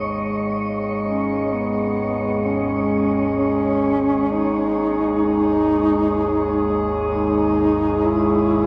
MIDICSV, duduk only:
0, 0, Header, 1, 2, 480
1, 0, Start_track
1, 0, Tempo, 923077
1, 331, Time_signature, 4, 2, 24, 8
1, 4505, End_track
2, 0, Start_track
2, 0, Title_t, "Duduk"
2, 0, Program_c, 0, 69
2, 556, Note_on_c, 0, 61, 74
2, 797, Note_on_c, 0, 59, 78
2, 805, Note_off_c, 0, 61, 0
2, 1284, Note_on_c, 0, 61, 80
2, 1292, Note_off_c, 0, 59, 0
2, 1752, Note_off_c, 0, 61, 0
2, 1755, Note_on_c, 0, 61, 105
2, 2247, Note_on_c, 0, 63, 95
2, 2255, Note_off_c, 0, 61, 0
2, 2729, Note_off_c, 0, 63, 0
2, 2738, Note_on_c, 0, 63, 111
2, 3533, Note_off_c, 0, 63, 0
2, 3704, Note_on_c, 0, 63, 108
2, 4187, Note_on_c, 0, 64, 103
2, 4195, Note_off_c, 0, 63, 0
2, 4505, Note_off_c, 0, 64, 0
2, 4505, End_track
0, 0, End_of_file